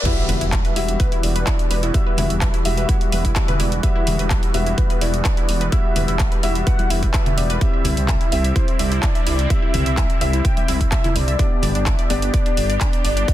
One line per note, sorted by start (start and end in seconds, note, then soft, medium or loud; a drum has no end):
0.05 7.57 E3 medium
0.05 0.73 G3 medium
0.05 11.35 G3 medium
0.05 7.57 B3 medium
0.05 0.09 E4 medium
0.05 7.57 F#4 medium
0.05 0.73 F#4 medium
0.05 0.73 E5 medium
0.05 0.52 E5 loud
0.05 kick loud
0.05 closed hi-hat medium
0.05 crash loud
0.05 impact medium
0.28 0.39 E1 loud
0.28 0.36 B4 medium
0.28 open hi-hat loud
0.28 high conga medium
0.28 low conga medium
0.41 0.61 E1 medium
0.41 0.45 E4 medium
0.41 closed hi-hat medium
0.52 0.97 E5 loud
0.52 kick loud
0.52 clap loud
0.52 closed hi-hat medium
0.65 0.71 B4 medium
0.65 closed hi-hat soft
0.76 0.96 E1 medium
0.76 1.92 G3 medium
0.76 0.80 E4 medium
0.76 1.92 F#4 medium
0.76 1.92 E5 loud
0.76 open hi-hat loud
0.88 closed hi-hat medium
1.00 1.07 B4 medium
1.00 1.25 B4 medium
1.00 kick loud
1.00 closed hi-hat medium
1.12 1.16 E4 medium
1.12 closed hi-hat soft
1.23 1.44 E1 medium
1.23 1.94 D5 loud
1.23 open hi-hat loud
1.36 1.42 B4 medium
1.36 closed hi-hat medium
1.47 1.51 E4 medium
1.47 kick loud
1.47 clap loud
1.47 closed hi-hat medium
1.59 closed hi-hat soft
1.71 1.91 E1 medium
1.71 1.77 B4 medium
1.71 open hi-hat loud
1.83 1.87 E4 medium
1.83 closed hi-hat medium
1.94 2.62 G3 medium
1.94 2.62 F#4 medium
1.94 2.16 E5 loud
1.94 2.62 E5 medium
1.94 kick loud
1.94 closed hi-hat medium
2.07 2.13 B4 medium
2.17 2.28 E1 loud
2.17 2.22 E4 medium
2.17 2.62 E5 loud
2.17 open hi-hat loud
2.17 high conga medium
2.17 low conga loud
2.30 2.50 E1 medium
2.30 closed hi-hat medium
2.41 2.48 B4 medium
2.41 kick loud
2.41 clap loud
2.41 closed hi-hat medium
2.54 2.58 E4 medium
2.54 closed hi-hat soft
2.65 2.85 E1 medium
2.65 3.81 G3 medium
2.65 3.81 F#4 medium
2.65 2.90 E5 loud
2.65 3.81 E5 loud
2.65 open hi-hat loud
2.77 2.84 B4 medium
2.77 closed hi-hat medium
2.89 2.93 E4 medium
2.89 3.14 F#5 loud
2.89 kick loud
2.89 closed hi-hat medium
3.01 closed hi-hat soft
3.01 high conga medium
3.12 3.33 E1 medium
3.12 3.19 B4 medium
3.12 3.35 E5 loud
3.12 open hi-hat loud
3.12 high conga medium
3.25 3.28 E4 medium
3.25 kick medium
3.25 closed hi-hat medium
3.36 3.61 E5 loud
3.36 kick loud
3.36 clap loud
3.36 closed hi-hat medium
3.48 3.55 B4 medium
3.48 closed hi-hat soft
3.48 low conga medium
3.60 3.80 E1 medium
3.60 3.64 E4 medium
3.60 3.83 D5 loud
3.60 open hi-hat loud
3.72 closed hi-hat medium
3.83 4.51 G3 medium
3.83 4.51 F#4 medium
3.83 3.90 B4 medium
3.83 4.51 E5 medium
3.83 4.27 E5 loud
3.83 kick loud
3.83 closed hi-hat medium
3.96 3.99 E4 medium
4.07 4.17 E1 loud
4.07 open hi-hat loud
4.07 high conga medium
4.07 low conga loud
4.19 4.39 E1 medium
4.19 4.25 B4 medium
4.19 closed hi-hat medium
4.30 4.35 E4 medium
4.30 4.75 E5 loud
4.30 kick loud
4.30 clap loud
4.30 closed hi-hat medium
4.43 closed hi-hat soft
4.54 4.74 E1 medium
4.54 5.70 G3 medium
4.54 5.70 F#4 medium
4.54 4.61 B4 medium
4.54 5.70 E5 loud
4.54 open hi-hat loud
4.66 4.70 E4 medium
4.66 closed hi-hat medium
4.78 5.03 B4 loud
4.78 kick loud
4.78 closed hi-hat medium
4.90 4.96 B4 medium
4.90 closed hi-hat soft
5.01 5.22 E1 medium
5.01 5.05 E4 medium
5.01 5.72 D5 loud
5.01 open hi-hat loud
5.14 closed hi-hat medium
5.25 5.32 B4 medium
5.25 kick loud
5.25 clap loud
5.25 closed hi-hat medium
5.37 5.41 E4 medium
5.37 closed hi-hat soft
5.49 5.69 E1 medium
5.49 open hi-hat loud
5.61 5.67 B4 medium
5.61 closed hi-hat medium
5.72 6.40 G3 medium
5.72 5.76 E4 medium
5.72 6.40 F#4 medium
5.72 5.94 E5 loud
5.72 6.40 E5 medium
5.72 kick loud
5.72 closed hi-hat medium
5.96 6.06 E1 loud
5.96 6.03 B4 medium
5.96 6.40 E5 loud
5.96 open hi-hat loud
5.96 high conga medium
5.96 low conga medium
6.08 6.28 E1 medium
6.08 6.12 E4 medium
6.08 closed hi-hat medium
6.19 kick loud
6.19 clap loud
6.19 closed hi-hat medium
6.32 6.38 B4 medium
6.32 closed hi-hat soft
6.43 6.63 E1 medium
6.43 7.59 G3 medium
6.43 6.47 E4 medium
6.43 7.59 F#4 medium
6.43 6.54 E5 loud
6.43 7.59 E5 loud
6.43 open hi-hat loud
6.55 closed hi-hat medium
6.67 6.74 B4 medium
6.67 6.92 F#5 loud
6.67 kick loud
6.67 closed hi-hat medium
6.79 6.83 E4 medium
6.79 closed hi-hat soft
6.79 high conga medium
6.90 7.10 E1 medium
6.90 6.97 E4 medium
6.90 7.13 E5 loud
6.90 open hi-hat loud
6.90 high conga medium
7.03 7.12 B4 medium
7.03 kick medium
7.03 closed hi-hat medium
7.14 7.24 B4 medium
7.14 7.39 E5 loud
7.14 kick loud
7.14 clap loud
7.14 closed hi-hat medium
7.26 closed hi-hat soft
7.26 low conga loud
7.38 7.58 E1 medium
7.38 7.63 D5 loud
7.38 7.44 E5 medium
7.38 open hi-hat loud
7.50 7.59 B4 loud
7.50 closed hi-hat medium
7.61 11.35 C3 medium
7.61 8.29 C4 medium
7.61 11.35 C4 medium
7.61 11.35 E4 medium
7.61 8.29 G4 medium
7.61 8.08 E5 loud
7.61 8.29 E5 medium
7.61 kick loud
7.61 closed hi-hat medium
7.74 7.80 E5 medium
7.85 7.95 C2 loud
7.85 7.89 E4 medium
7.85 open hi-hat loud
7.85 high conga medium
7.85 low conga medium
7.97 8.17 C2 medium
7.97 closed hi-hat medium
8.08 8.52 E5 loud
8.08 8.15 E5 medium
8.08 kick loud
8.08 clap loud
8.08 closed hi-hat medium
8.21 8.25 E4 medium
8.21 closed hi-hat soft
8.32 8.52 C2 medium
8.32 9.48 C4 medium
8.32 9.48 G4 medium
8.32 9.48 E5 loud
8.32 open hi-hat loud
8.44 8.51 E5 medium
8.44 closed hi-hat medium
8.56 8.60 E4 medium
8.56 8.81 C5 loud
8.56 kick loud
8.56 closed hi-hat medium
8.68 closed hi-hat soft
8.79 8.99 C2 medium
8.79 9.52 D5 loud
8.79 8.86 E5 medium
8.79 open hi-hat loud
8.92 8.95 E4 medium
8.92 closed hi-hat medium
9.03 kick loud
9.03 clap loud
9.03 closed hi-hat medium
9.15 9.22 E5 medium
9.15 closed hi-hat soft
9.27 9.47 C2 medium
9.27 9.31 E4 medium
9.27 open hi-hat loud
9.39 closed hi-hat medium
9.50 10.18 C4 medium
9.50 10.18 G4 medium
9.50 9.73 E5 loud
9.50 9.57 E5 medium
9.50 10.18 E5 medium
9.50 kick loud
9.50 closed hi-hat medium
9.63 9.66 E4 medium
9.74 9.84 C2 loud
9.74 10.18 E5 loud
9.74 open hi-hat loud
9.74 high conga medium
9.74 low conga medium
9.86 10.06 C2 medium
9.86 9.92 E5 medium
9.86 closed hi-hat medium
9.97 10.02 E4 medium
9.97 kick loud
9.97 clap loud
9.97 closed hi-hat medium
10.10 closed hi-hat soft
10.21 10.41 C2 medium
10.21 11.37 C4 medium
10.21 11.37 G4 medium
10.21 10.46 E5 loud
10.21 11.37 E5 loud
10.21 10.28 E5 medium
10.21 open hi-hat loud
10.33 10.37 E4 medium
10.33 closed hi-hat medium
10.45 10.70 G5 loud
10.45 kick loud
10.45 closed hi-hat medium
10.57 10.63 E5 medium
10.57 closed hi-hat soft
10.57 high conga medium
10.68 10.88 C2 medium
10.68 10.72 E4 medium
10.68 10.91 E5 loud
10.68 open hi-hat loud
10.68 high conga medium
10.81 kick medium
10.81 closed hi-hat medium
10.92 11.17 E5 loud
10.92 10.99 E5 medium
10.92 kick loud
10.92 clap loud
10.92 closed hi-hat medium
11.04 11.08 E4 medium
11.04 closed hi-hat soft
11.04 low conga medium
11.16 11.36 C2 medium
11.16 11.88 D5 loud
11.16 open hi-hat loud
11.28 11.34 E5 medium
11.28 closed hi-hat medium
11.39 12.07 B3 medium
11.39 13.34 B3 medium
11.39 13.34 D4 medium
11.39 11.43 D4 medium
11.39 12.07 G4 medium
11.39 13.34 G4 medium
11.39 12.07 D5 medium
11.39 kick loud
11.39 closed hi-hat medium
11.62 11.73 G1 loud
11.62 11.70 D5 medium
11.62 open hi-hat loud
11.62 high conga medium
11.62 low conga medium
11.75 11.95 G1 medium
11.75 11.79 D4 medium
11.75 closed hi-hat medium
11.86 12.12 E5 loud
11.86 kick loud
11.86 clap loud
11.86 closed hi-hat medium
11.99 12.05 D5 medium
11.99 closed hi-hat soft
12.10 12.30 G1 medium
12.10 13.25 B3 medium
12.10 12.14 D4 medium
12.10 13.25 G4 medium
12.10 13.25 D5 loud
12.10 13.34 D5 loud
12.10 open hi-hat loud
12.22 closed hi-hat medium
12.34 12.40 D5 medium
12.34 kick loud
12.34 closed hi-hat medium
12.46 12.50 D4 medium
12.46 closed hi-hat soft
12.57 12.77 G1 medium
12.57 open hi-hat loud
12.70 12.76 D5 medium
12.70 closed hi-hat medium
12.81 12.85 D4 medium
12.81 kick loud
12.81 clap loud
12.81 closed hi-hat medium
12.93 closed hi-hat soft
13.05 13.25 G1 medium
13.05 13.11 D5 medium
13.05 open hi-hat loud
13.17 13.21 D4 medium
13.17 closed hi-hat medium
13.28 13.34 B3 medium
13.28 13.34 G4 medium
13.28 13.34 D5 medium
13.28 kick loud
13.28 closed hi-hat medium